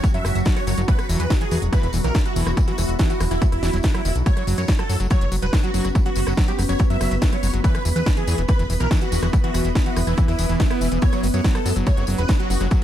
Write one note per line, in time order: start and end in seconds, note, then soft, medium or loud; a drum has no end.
0.00 4.27 F#3 medium
0.00 0.08 F#3 medium
0.00 2.23 C#4 medium
0.00 1.76 F#4 medium
0.00 4.27 F#4 medium
0.00 1.80 F#5 medium
0.00 1.87 C#6 medium
0.00 kick loud
0.00 closed hi-hat medium
0.00 tambourine medium
0.14 0.21 F#2 medium
0.14 0.18 F#3 medium
0.14 0.39 E5 medium
0.14 closed hi-hat soft
0.25 0.32 F#1 medium
0.25 0.29 F#3 medium
0.25 cross-stick medium
0.25 open hi-hat loud
0.25 tambourine medium
0.35 0.42 F#1 medium
0.35 closed hi-hat medium
0.35 tambourine soft
0.45 0.56 F#3 medium
0.45 kick loud
0.45 snare loud
0.45 closed hi-hat medium
0.45 tambourine medium
0.56 0.61 F#3 medium
0.56 0.75 C#5 loud
0.56 cross-stick soft
0.56 closed hi-hat medium
0.56 tambourine soft
0.67 0.74 F#1 loud
0.67 0.71 F#3 medium
0.67 open hi-hat loud
0.67 tambourine medium
0.78 0.85 F#1 medium
0.78 0.82 F#3 medium
0.78 closed hi-hat medium
0.78 tambourine soft
0.88 0.92 E3 medium
0.88 5.24 B3 medium
0.88 1.07 B4 loud
0.88 kick loud
0.88 closed hi-hat medium
0.88 tambourine medium
0.99 cross-stick medium
0.99 closed hi-hat medium
0.99 tambourine soft
1.09 1.16 E1 loud
1.09 1.19 E3 medium
1.09 5.10 E4 medium
1.09 open hi-hat loud
1.09 tambourine medium
1.14 4.86 E5 medium
1.19 1.27 E2 medium
1.19 1.24 E3 medium
1.19 1.32 B4 medium
1.19 closed hi-hat medium
1.19 tambourine soft
1.30 1.35 E3 medium
1.30 kick loud
1.30 cross-stick soft
1.30 snare loud
1.30 closed hi-hat loud
1.30 tambourine medium
1.41 1.45 E3 medium
1.41 1.59 G#4 medium
1.41 closed hi-hat medium
1.51 1.59 E2 loud
1.51 1.56 E3 medium
1.51 open hi-hat loud
1.51 tambourine medium
1.62 1.69 E1 medium
1.62 5.61 B5 medium
1.62 closed hi-hat medium
1.62 tambourine soft
1.73 1.83 E3 medium
1.73 1.91 B4 medium
1.73 kick loud
1.73 cross-stick medium
1.73 closed hi-hat medium
1.73 tambourine medium
1.83 1.90 E1 medium
1.83 1.87 E3 medium
1.83 closed hi-hat medium
1.83 tambourine soft
1.93 2.01 E1 loud
1.93 1.98 E3 medium
1.93 open hi-hat loud
1.93 tambourine medium
2.04 2.11 B1 medium
2.04 2.09 E3 medium
2.04 2.17 A#4 medium
2.04 cross-stick soft
2.04 closed hi-hat medium
2.04 tambourine soft
2.14 2.19 E3 medium
2.14 kick loud
2.14 snare loud
2.14 closed hi-hat loud
2.14 tambourine medium
2.25 2.50 F#4 loud
2.25 closed hi-hat medium
2.25 tambourine soft
2.36 2.43 E1 loud
2.36 2.46 E3 medium
2.36 open hi-hat loud
2.36 tambourine medium
2.47 2.54 E1 medium
2.47 2.51 E3 medium
2.47 cross-stick medium
2.47 closed hi-hat medium
2.47 tambourine soft
2.57 2.61 E3 medium
2.57 kick loud
2.57 closed hi-hat loud
2.57 tambourine medium
2.68 2.72 E3 medium
2.68 2.92 F#4 loud
2.68 closed hi-hat medium
2.68 tambourine soft
2.78 2.85 E1 loud
2.78 2.83 E3 medium
2.78 cross-stick soft
2.78 open hi-hat loud
2.78 tambourine medium
2.89 2.96 E1 medium
2.89 closed hi-hat medium
2.89 tambourine soft
2.99 3.09 E3 medium
2.99 kick loud
2.99 snare loud
2.99 closed hi-hat loud
2.99 tambourine medium
3.10 3.14 E3 medium
3.10 3.22 F#4 medium
3.10 closed hi-hat medium
3.10 tambourine soft
3.20 3.28 E1 loud
3.20 3.25 E3 medium
3.20 cross-stick medium
3.20 open hi-hat loud
3.20 tambourine medium
3.31 3.38 E1 medium
3.31 3.35 E3 medium
3.31 3.43 E4 medium
3.31 closed hi-hat medium
3.31 tambourine soft
3.42 3.46 E3 medium
3.42 kick loud
3.42 closed hi-hat medium
3.42 tambourine medium
3.52 3.59 E1 medium
3.52 3.77 E4 medium
3.52 cross-stick soft
3.52 closed hi-hat medium
3.52 tambourine soft
3.63 3.70 E1 loud
3.63 3.70 E3 medium
3.63 snare medium
3.63 open hi-hat loud
3.63 tambourine medium
3.73 3.80 E1 medium
3.73 3.78 F#3 medium
3.73 closed hi-hat medium
3.73 tambourine soft
3.83 kick loud
3.83 snare loud
3.83 closed hi-hat loud
3.83 tambourine medium
3.94 4.02 F#3 medium
3.94 4.13 E4 loud
3.94 cross-stick medium
3.94 closed hi-hat medium
3.94 tambourine soft
4.05 4.12 E1 loud
4.05 4.09 D#3 medium
4.05 open hi-hat loud
4.05 tambourine medium
4.16 4.23 B1 medium
4.16 closed hi-hat medium
4.16 tambourine soft
4.26 4.30 F#3 medium
4.26 12.84 B3 medium
4.26 8.21 C#4 medium
4.26 12.84 B4 medium
4.26 4.45 C#5 loud
4.26 kick loud
4.26 closed hi-hat medium
4.26 tambourine medium
4.35 4.44 F#3 medium
4.35 8.99 F#4 medium
4.35 cross-stick soft
4.35 closed hi-hat medium
4.35 tambourine soft
4.47 4.54 F#1 loud
4.47 4.57 F#3 medium
4.47 open hi-hat loud
4.47 tambourine medium
4.55 4.65 F#2 medium
4.55 4.62 F#3 medium
4.55 4.70 C#5 medium
4.55 8.88 F#5 loud
4.55 closed hi-hat medium
4.55 tambourine soft
4.68 4.73 F#3 medium
4.68 kick loud
4.68 snare loud
4.68 closed hi-hat loud
4.68 tambourine medium
4.79 4.83 F#3 medium
4.79 4.97 A4 loud
4.79 cross-stick medium
4.79 closed hi-hat medium
4.79 tambourine soft
4.89 4.97 F#2 loud
4.89 4.94 F#3 medium
4.89 open hi-hat loud
4.89 tambourine medium
5.00 5.07 F#1 medium
5.00 5.07 F#3 medium
5.00 closed hi-hat medium
5.00 tambourine soft
5.10 5.21 F#3 medium
5.10 5.29 C#5 loud
5.10 kick loud
5.10 cross-stick soft
5.10 closed hi-hat medium
5.10 tambourine medium
5.21 5.28 F#1 medium
5.21 5.25 F#3 medium
5.21 closed hi-hat medium
5.21 tambourine soft
5.26 8.67 C#6 medium
5.32 5.39 F#1 medium
5.32 5.36 F#3 medium
5.32 open hi-hat loud
5.32 tambourine medium
5.42 5.50 E1 medium
5.42 5.47 F#3 medium
5.42 5.55 B4 medium
5.42 closed hi-hat medium
5.42 tambourine soft
5.53 5.57 F#3 medium
5.53 kick loud
5.53 cross-stick medium
5.53 snare loud
5.53 closed hi-hat loud
5.53 tambourine medium
5.63 5.71 F#3 medium
5.63 5.88 F#4 loud
5.63 closed hi-hat medium
5.63 tambourine soft
5.74 5.81 F#1 loud
5.74 5.84 F#3 medium
5.74 open hi-hat loud
5.74 tambourine medium
5.85 5.92 F#1 medium
5.85 5.89 F#3 medium
5.85 cross-stick soft
5.85 closed hi-hat medium
5.85 tambourine soft
5.95 5.99 F#3 medium
5.95 kick loud
5.95 closed hi-hat medium
5.95 tambourine medium
6.05 6.10 F#3 medium
6.05 6.30 F#4 loud
6.05 closed hi-hat medium
6.05 tambourine soft
6.15 6.23 F#1 loud
6.15 6.21 F#3 medium
6.15 open hi-hat loud
6.15 tambourine loud
6.27 6.34 F#1 medium
6.27 6.34 F#3 medium
6.27 cross-stick medium
6.27 closed hi-hat medium
6.27 tambourine soft
6.37 6.47 F#3 medium
6.37 kick loud
6.37 snare loud
6.37 closed hi-hat medium
6.37 tambourine medium
6.48 6.52 F#3 medium
6.48 6.60 G4 medium
6.48 closed hi-hat medium
6.48 tambourine soft
6.59 6.66 F#1 loud
6.59 6.63 F#3 medium
6.59 cross-stick soft
6.59 open hi-hat loud
6.59 tambourine medium
6.69 6.76 F#1 medium
6.69 6.73 F#3 medium
6.69 6.81 C#5 medium
6.69 closed hi-hat medium
6.69 tambourine soft
6.79 6.84 F#3 medium
6.79 kick loud
6.79 closed hi-hat medium
6.79 tambourine medium
6.90 6.97 F#2 medium
6.90 6.97 F#3 medium
6.90 7.15 E5 loud
6.90 closed hi-hat medium
6.90 tambourine soft
7.01 7.08 F#1 medium
7.01 7.11 F#3 medium
7.01 cross-stick medium
7.01 open hi-hat loud
7.01 tambourine medium
7.11 7.18 F#1 medium
7.11 7.16 F#3 medium
7.11 closed hi-hat medium
7.11 tambourine soft
7.22 7.26 F#3 medium
7.22 kick loud
7.22 snare loud
7.22 closed hi-hat loud
7.22 tambourine medium
7.32 7.37 F#3 medium
7.32 7.51 C#5 medium
7.32 cross-stick soft
7.32 closed hi-hat medium
7.32 tambourine soft
7.43 7.50 F#1 loud
7.43 7.47 F#3 medium
7.43 open hi-hat loud
7.43 tambourine loud
7.53 7.61 F#1 medium
7.53 7.61 F#3 medium
7.53 closed hi-hat medium
7.53 tambourine soft
7.64 7.74 E3 medium
7.64 11.96 B3 medium
7.64 7.83 B4 loud
7.64 kick loud
7.64 closed hi-hat medium
7.64 tambourine medium
7.75 7.79 E3 medium
7.75 cross-stick medium
7.75 closed hi-hat medium
7.75 tambourine soft
7.85 7.92 E1 loud
7.85 7.90 E3 medium
7.85 open hi-hat loud
7.85 tambourine loud
7.92 8.03 E2 medium
7.92 8.00 E3 medium
7.92 11.61 E4 medium
7.92 8.08 B4 medium
7.92 closed hi-hat medium
7.92 tambourine soft
8.06 8.11 E3 medium
8.06 kick loud
8.06 cross-stick soft
8.06 snare loud
8.06 closed hi-hat medium
8.06 tambourine medium
8.16 8.24 E3 medium
8.16 8.35 G#4 loud
8.16 closed hi-hat medium
8.16 tambourine soft
8.27 8.35 E2 loud
8.27 8.38 E3 medium
8.27 open hi-hat loud
8.27 tambourine medium
8.38 8.45 E1 medium
8.38 8.42 E3 medium
8.38 12.35 E5 medium
8.38 closed hi-hat medium
8.38 tambourine soft
8.48 8.53 E3 medium
8.48 8.67 B4 loud
8.48 kick loud
8.48 cross-stick medium
8.48 closed hi-hat medium
8.48 tambourine medium
8.52 12.03 B5 medium
8.59 8.66 E1 medium
8.59 8.63 E3 medium
8.59 closed hi-hat medium
8.59 tambourine soft
8.70 8.77 E1 medium
8.70 8.74 E3 medium
8.70 open hi-hat loud
8.70 tambourine medium
8.80 8.88 B1 medium
8.80 8.87 E3 medium
8.80 8.93 A#4 medium
8.80 cross-stick soft
8.80 closed hi-hat soft
8.80 tambourine soft
8.91 9.01 E3 medium
8.91 kick loud
8.91 snare loud
8.91 closed hi-hat medium
8.91 tambourine medium
9.01 9.06 E3 medium
9.01 9.26 F#4 loud
9.01 closed hi-hat medium
9.01 tambourine soft
9.12 9.19 E1 medium
9.12 9.16 E3 medium
9.12 open hi-hat loud
9.12 tambourine loud
9.23 9.30 E1 medium
9.23 9.27 E3 medium
9.23 cross-stick medium
9.23 closed hi-hat medium
9.23 tambourine soft
9.33 9.37 E3 medium
9.33 kick loud
9.33 closed hi-hat medium
9.33 tambourine medium
9.44 9.51 E3 medium
9.44 9.68 F#4 loud
9.44 closed hi-hat soft
9.44 tambourine soft
9.54 9.61 E1 loud
9.54 9.64 E3 medium
9.54 cross-stick soft
9.54 open hi-hat loud
9.54 tambourine loud
9.64 9.72 E1 medium
9.64 9.69 E3 medium
9.64 closed hi-hat medium
9.64 tambourine soft
9.75 9.80 E3 medium
9.75 kick loud
9.75 snare loud
9.75 closed hi-hat medium
9.75 tambourine medium
9.86 9.90 E3 medium
9.86 9.98 F#4 medium
9.86 closed hi-hat medium
9.86 tambourine soft
9.96 10.04 E1 medium
9.96 10.01 E3 medium
9.96 cross-stick medium
9.96 open hi-hat loud
9.96 tambourine medium
10.07 10.14 E1 medium
10.07 10.14 E3 medium
10.07 10.19 E4 medium
10.07 closed hi-hat soft
10.07 tambourine soft
10.17 10.28 E3 medium
10.17 kick loud
10.17 closed hi-hat medium
10.17 tambourine medium
10.28 10.35 E2 medium
10.28 10.33 E3 medium
10.28 10.53 E4 medium
10.28 cross-stick soft
10.28 closed hi-hat medium
10.28 tambourine soft
10.39 10.46 E1 medium
10.39 10.46 E3 medium
10.39 open hi-hat loud
10.39 tambourine loud
10.49 10.57 E1 medium
10.49 10.59 E3 medium
10.49 closed hi-hat soft
10.49 tambourine soft
10.60 10.67 E3 medium
10.60 kick loud
10.60 snare loud
10.60 closed hi-hat medium
10.60 tambourine medium
10.70 10.80 B3 loud
10.70 10.89 E4 loud
10.70 cross-stick medium
10.70 closed hi-hat medium
10.70 tambourine soft
10.81 10.88 E1 medium
10.81 10.88 E3 medium
10.81 open hi-hat loud
10.81 tambourine loud
10.92 10.99 E1 medium
10.92 10.99 E3 medium
10.92 closed hi-hat medium
10.92 tambourine soft
11.02 11.06 F#3 medium
11.02 12.84 C#4 medium
11.02 11.21 C#5 loud
11.02 kick loud
11.02 closed hi-hat medium
11.02 tambourine soft
11.12 11.23 F#3 medium
11.12 cross-stick soft
11.12 closed hi-hat medium
11.12 tambourine soft
11.23 11.30 F#1 loud
11.23 11.28 F#3 medium
11.23 12.84 F#4 medium
11.23 open hi-hat loud
11.23 tambourine medium
11.28 12.84 F#5 medium
11.34 11.41 F#2 medium
11.34 11.41 F#3 medium
11.34 11.46 C#5 medium
11.34 closed hi-hat medium
11.34 tambourine soft
11.44 11.54 F#3 medium
11.44 kick loud
11.44 snare loud
11.44 closed hi-hat medium
11.44 tambourine medium
11.55 11.59 F#3 medium
11.55 11.74 A4 loud
11.55 cross-stick medium
11.55 closed hi-hat medium
11.55 tambourine soft
11.66 11.73 F#2 loud
11.66 11.70 F#3 medium
11.66 open hi-hat loud
11.66 tambourine loud
11.76 11.83 F#1 medium
11.76 11.86 F#3 medium
11.76 closed hi-hat medium
11.76 tambourine soft
11.80 12.84 C#6 medium
11.86 11.91 F#3 medium
11.86 12.05 C#5 loud
11.86 kick loud
11.86 cross-stick soft
11.86 closed hi-hat medium
11.86 tambourine medium
11.97 12.04 F#1 medium
11.97 12.04 F#3 medium
11.97 closed hi-hat medium
11.97 tambourine soft
12.07 12.15 F#1 medium
12.07 12.18 F#3 medium
12.07 open hi-hat loud
12.07 tambourine loud
12.18 12.26 E1 medium
12.18 12.23 F#3 medium
12.18 12.31 B4 medium
12.18 closed hi-hat soft
12.18 tambourine soft
12.28 12.33 F#3 medium
12.28 kick loud
12.28 cross-stick medium
12.28 snare loud
12.28 closed hi-hat medium
12.28 tambourine medium
12.40 12.50 F#3 medium
12.40 12.64 F#4 loud
12.40 closed hi-hat medium
12.40 tambourine soft
12.50 12.57 F#1 loud
12.50 12.54 F#3 medium
12.50 open hi-hat loud
12.50 tambourine medium
12.60 12.68 F#1 medium
12.60 12.68 F#3 medium
12.60 cross-stick soft
12.60 closed hi-hat medium
12.60 tambourine soft
12.71 12.81 F#3 medium
12.71 kick loud
12.71 closed hi-hat medium
12.71 tambourine soft